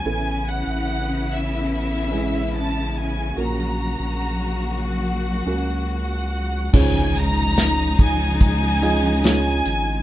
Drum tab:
CC |--------|--------|x-------|
HH |--------|--------|-xxxxxxx|
SD |--------|--------|--o---o-|
BD |--------|--------|o--oo---|